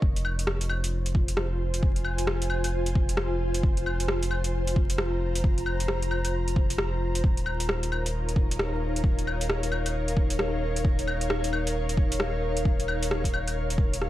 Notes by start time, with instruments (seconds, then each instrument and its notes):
0.02 sub bass F1, ambient pad F4, kick
0.16 closed hi-hat
0.23 ambient pad C5, claves
0.39 closed hi-hat
0.47 cross-stick
0.61 closed hi-hat
0.69 claves
0.84 closed hi-hat
1.06 closed hi-hat
1.15 ambient pad G#5, kick
1.28 closed hi-hat
1.37 cross-stick
1.74 closed hi-hat
1.83 kick
1.96 closed hi-hat
2.04 claves
2.18 closed hi-hat
2.27 cross-stick
2.42 closed hi-hat
2.50 claves
2.64 closed hi-hat, claves
2.86 closed hi-hat
2.96 kick
3.09 closed hi-hat
3.17 cross-stick
3.54 closed hi-hat
3.63 kick
3.77 closed hi-hat
3.86 claves
4.00 closed hi-hat
4.08 cross-stick
4.23 closed hi-hat
4.31 claves
4.38 ambient pad A#5
4.44 closed hi-hat
4.67 closed hi-hat
4.76 kick
4.90 closed hi-hat
4.98 cross-stick
5.35 closed hi-hat
5.44 kick
5.58 closed hi-hat
5.66 claves
5.80 closed hi-hat
5.88 cross-stick
6.02 closed hi-hat
6.11 claves
6.25 closed hi-hat, claves
6.48 closed hi-hat
6.56 kick
6.70 closed hi-hat
6.78 cross-stick
7.15 closed hi-hat
7.23 sub bass D#1, ambient pad D#4, kick
7.29 ambient pad A#4
7.37 closed hi-hat
7.44 ambient pad C#5, claves
7.60 closed hi-hat
7.69 cross-stick
7.76 ambient pad F5
7.83 closed hi-hat
7.92 claves
8.06 closed hi-hat
8.29 closed hi-hat
8.36 kick
8.51 closed hi-hat
8.59 cross-stick
8.96 closed hi-hat
9.04 kick
9.19 closed hi-hat
9.27 claves
9.41 closed hi-hat
9.49 cross-stick
9.63 closed hi-hat
9.72 claves
9.86 closed hi-hat, claves
10.08 closed hi-hat
10.17 kick
10.30 closed hi-hat
10.39 cross-stick
10.76 closed hi-hat
10.85 kick
10.99 closed hi-hat
11.07 claves
11.21 closed hi-hat
11.30 cross-stick
11.44 closed hi-hat
11.53 claves
11.67 closed hi-hat
11.89 closed hi-hat
11.97 kick
12.12 closed hi-hat
12.20 cross-stick
12.57 closed hi-hat
12.65 kick
12.80 closed hi-hat
12.88 claves
13.02 closed hi-hat
13.11 cross-stick
13.24 kick, closed hi-hat
13.34 claves
13.48 closed hi-hat, claves
13.70 closed hi-hat
13.78 kick
13.94 closed hi-hat
14.02 cross-stick